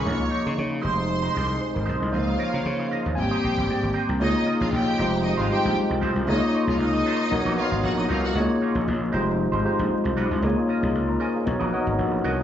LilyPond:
<<
  \new Staff \with { instrumentName = "String section" } { \time 4/4 \key des \lydian \tempo 4 = 116 <des'' des'''>4 r8 <c'' c'''>2 r8 | <f' f''>4. r8 <g' g''>4. r8 | <ees' ees''>8 r16 <f' f''>16 <g' g''>4 <ees' ees''>16 <f' f''>16 <g' g''>8 r4 | <ees' ees''>8 r16 <f' f''>16 <ees' ees''>4. <f' f''>8 <fis' fis''>16 <dis' dis''>16 <f' f''>16 <fis' fis''>16 |
r1 | r1 | }
  \new Staff \with { instrumentName = "Tine electric piano" } { \time 4/4 \key des \lydian << { aes'2~ aes'16 r8. c''16 bes'16 c''16 ees''16 | c''8 des''8 des''8 f''8 aes''8 g''4. | r1 | r1 |
r1 | r4 r16 <des'' bes''>16 <c'' aes''>16 <aes' f''>8 r8. fis''8 cis''8 | } \\ { <f bes ees'>4. <aes ees' g'>4. r4 | <f bes ees'>8 r4. <g bes c'>8 r4. | <bes ees' f' aes' des''>4. <aes ees' f' g' c''>4 <g aes ees' f' g' c''>4. | <bes ees' f' aes' des''>4.~ <bes ees' f' aes' des''>16 r16 <b dis' fis' ais' cis''>8 <b dis' fis' ais' cis'' dis''>4. |
<bes ees' f' aes' des''>4. <g aes ees' f' g' c''>4 <aes ees' f' g' c''>4. | <bes ees' f' aes' des''>4.~ <bes ees' f' aes' des''>16 r16 <b dis' fis' ais' cis''>8 <b dis' fis' ais' cis'' dis''>4. | } >> }
  \new Staff \with { instrumentName = "Clean electric guitar" } { \time 4/4 \key des \lydian <bes ees' f' des''>16 r16 <bes ees' f' des''>16 <bes ees' f' des''>16 r8 <aes ees' g' c''>16 r8 <aes ees' g' c''>16 <aes ees' g' c''>16 r8. <aes ees' g' c''>16 r16 | <des' f' bes' ees''>16 r16 <des' f' bes' ees''>16 <des' f' bes' ees''>16 r8 <des' f' bes' ees''>16 r8 <ees' g' c'' ees''>16 <ees' g' c'' ees''>16 r8. <ees' g' c'' ees''>16 r16 | <des' f' bes' ees''>16 r16 <des' f' bes' ees''>16 <des' f' bes' ees''>16 r8 <aes ees' g' c''>16 r8 <aes ees' g' c''>16 <aes ees' g' c''>16 r8. <aes ees' g' c''>16 r16 | <bes ees' f' des''>8 <bes ees' f' des''>16 <bes ees' f' des''>16 r8 <bes ees' f' des''>8 r16 <ais dis' fis' cis''>16 r4 <ais dis' fis' cis''>16 r16 |
<bes ees' f' des''>16 r16 <bes ees' f' des''>16 <bes ees' f' des''>16 r8 <aes ees' g' c''>16 r8 <aes ees' g' c''>16 <aes ees' g' c''>16 r8. <aes ees' g' c''>8 | <des' f' bes' ees''>16 r16 <des' f' bes' ees''>16 <des' f' bes' ees''>16 r8 <des' f' bes' ees''>16 r8 <cis' fis' ais' dis''>16 <cis' fis' ais' dis''>16 r8. <cis' fis' ais' dis''>16 r16 | }
  \new Staff \with { instrumentName = "French horn section" } { \time 4/4 \key des \lydian << { <des aes ees' f'>4. <f aes c' f'>2~ <f aes c' f'>8 | <des aes ees' f'>2 <c' g'>2 | <des aes ees' f'>4. <f aes c' g'>2~ <f aes c' g'>8 | <des aes f'>2 b2 |
<des aes ees' f'>4. <f aes c' g'>2~ <f aes c' g'>8 | <des aes ees' f'>2 <b dis'>2 | } \\ { bes4. r2 r8 | bes2 g2 | bes4. r2 r8 | bes'1 |
bes4. ees'2~ ees'8 | bes'1 | } >> }
  \new Staff \with { instrumentName = "Slap bass" } { \clef bass \time 4/4 \key des \lydian des,8 r16 des16 des8 f,,4 c,8 r16 aes,,16 ces,16 c,16 | des,8 r16 des16 des8 r16 ees,16 aes,,16 r16 bes,,16 aes,,16 aes,16 aes,,16 r16 c,16 | des,16 r8 bes,,16 bes,,8 f,,8. aes,,16 r16 bes,,16 r16 c,16 ces,16 c,16 | des,16 r8 c,16 des,8 r8 b,,16 ais,,16 r16 aes,,16 ais,,8 c,8 |
des,16 r8 bes,,16 bes,,8 f,,8. aes,,16 r16 bes,,16 r16 c,16 ces,16 c,16 | des,16 r8 c,16 des,8 r8 b,,16 ais,,16 r16 aes,,16 ais,,8 c,8 | }
>>